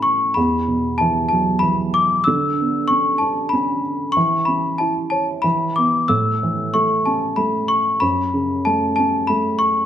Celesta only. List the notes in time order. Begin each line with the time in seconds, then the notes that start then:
0.02 C#6
0.34 B5
0.98 A5
1.29 A5
1.59 B5
1.94 D6
2.24 E6
2.88 C#6
3.18 A5
3.49 B5
4.12 C#6
4.45 B5
4.78 A5
5.10 A5
5.42 B5
5.76 D6
6.08 E6
6.74 C#6
7.06 A5
7.36 B5
7.68 C#6
8.00 B5
8.65 A5
8.96 A5
9.27 B5
9.59 C#6